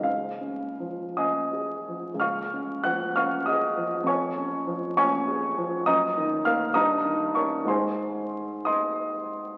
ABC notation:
X:1
M:6/8
L:1/8
Q:3/8=64
K:Db
V:1 name="Grand piano"
f3 [eae']3 | [fd'f']2 [gg'] [fd'f'] [ee']2 | [dad']3 [dad']3 | [ebe']2 [ff'] [ebe']2 [dd'] |
[cac']3 [ec'e']3 |]
V:2 name="Grand piano"
D,, D F, D A F, | D,, D F, D A F, | F,, D F, D A F, | G,, E, [B,B] =G,, E, [DB] |
[A,,A,EA]6 |]